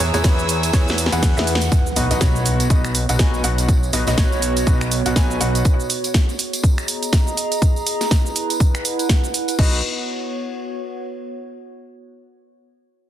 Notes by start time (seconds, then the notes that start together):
Already playing: E4 G#4 C#5 G#5 A#5 E6
0.00 E2 E3 E4 G#4 B4 C#5, open hi-hat, shaker
0.07 B4
0.14 E2 E3 E4 G#4 B4 C#5, snare, closed hi-hat, tambourine, shaker
0.24 E2 E3 E4 B4 C#5, kick, snare, closed hi-hat, ride, tambourine, shaker
0.38 tambourine, shaker
0.49 open hi-hat, shaker
0.63 F#5, closed hi-hat, tambourine, shaker
0.73 E2 E3 E4 G#4 B4 C#5, kick, snare, closed hi-hat, ride, tambourine, shaker
0.88 snare, tambourine, shaker
0.98 open hi-hat, shaker
1.06 snare
1.12 E2 E3 E4 G#4 B4 F#5, closed hi-hat, tambourine, shaker
1.22 kick, snare, closed hi-hat, ride, tambourine, shaker
1.37 E2 E3 E4 G#4 B4 E5, snare, tambourine, shaker
1.47 open hi-hat, shaker
1.55 snare
1.61 closed hi-hat, tambourine, shaker
1.72 B3, kick, closed hi-hat, tambourine, impact, shaker
1.86 tambourine, shaker
1.96 B1 B2 D#4 F#4 B4 D#5, open hi-hat, shaker
2.05 C#5
2.11 B1 B2 D#4 F#4 B4 D#5, closed hi-hat, tambourine, shaker
2.21 B1 B2 D#4 F#4 B4 C#5, kick, snare, closed hi-hat, tambourine, shaker
2.36 tambourine, shaker
2.41 F#4
2.46 open hi-hat, shaker
2.60 closed hi-hat, tambourine, shaker
2.70 B1 B2 D#4 F#4 B4 D#5, kick, closed hi-hat, tambourine, shaker
2.84 finger snap, tambourine, shaker
2.95 open hi-hat, shaker
3.09 B1 B2 D#4 F#4 B4 F#5, closed hi-hat, tambourine, shaker
3.19 B1 B2 D#4 F#4 B4 G#5, kick, snare, closed hi-hat, shaker
3.34 tambourine, shaker
3.44 B1 B2 D#4 F#4 B4 F#5, open hi-hat, shaker
3.58 closed hi-hat, tambourine, shaker
3.68 kick, closed hi-hat, tambourine, shaker
3.83 tambourine, shaker
3.93 B1 B2 D#4 F#4 B4 D#5, open hi-hat, shaker
4.07 B1 B2 D#4 F#4 B4 D#5, snare, closed hi-hat, tambourine, shaker
4.18 B1 D#4 F#4 B4 C#5, kick, snare, closed hi-hat, tambourine, shaker
4.32 tambourine, shaker
4.42 open hi-hat, shaker
4.56 closed hi-hat, tambourine, shaker
4.66 B1 B2 D#4 F#4 B4 D#5, kick, closed hi-hat, tambourine, shaker
4.81 finger snap, tambourine, shaker
4.91 open hi-hat, shaker
5.06 B1 B2 D#4 F#4 B4 F#5, closed hi-hat, tambourine, shaker
5.16 B1 B2 D#4 F#4 B4 G#5, kick, snare, closed hi-hat, tambourine, shaker
5.30 tambourine, shaker
5.41 B1 B2 D#4 F#4 B4 F#5, open hi-hat, shaker
5.55 closed hi-hat, tambourine, shaker
5.65 kick, closed hi-hat, tambourine, shaker
5.80 tambourine, shaker
5.90 open hi-hat, shaker
6.04 closed hi-hat, tambourine, shaker
6.14 kick, snare, closed hi-hat, tambourine, shaker
6.26 G#4, tambourine, shaker
6.39 open hi-hat, shaker
6.50 D#5, closed hi-hat, tambourine, shaker
6.55 A#5
6.64 kick, closed hi-hat, shaker
6.78 finger snap, tambourine, shaker
6.88 open hi-hat, shaker
7.03 closed hi-hat, tambourine, shaker
7.13 kick, snare, closed hi-hat, tambourine, shaker
7.27 tambourine, shaker
7.37 open hi-hat, shaker
7.52 closed hi-hat, tambourine, shaker
7.62 E4, kick, closed hi-hat, tambourine, shaker
7.76 tambourine, shaker
7.83 B4, open hi-hat
7.87 shaker
8.01 snare, closed hi-hat, tambourine, shaker
8.11 kick, snare, closed hi-hat, tambourine, shaker
8.26 tambourine, shaker
8.36 open hi-hat, shaker
8.50 F#5, closed hi-hat, tambourine, shaker
8.60 kick, closed hi-hat, tambourine, shaker
8.74 finger snap, tambourine, shaker
8.85 open hi-hat, shaker
8.99 closed hi-hat, tambourine, shaker
9.09 kick, snare, closed hi-hat, tambourine, shaker
9.24 tambourine, shaker
9.34 open hi-hat, shaker
9.48 closed hi-hat, tambourine, shaker
9.59 B1 B3 D#4 F#4 B4 D#5, kick, crash
9.67 F#4
9.75 C#5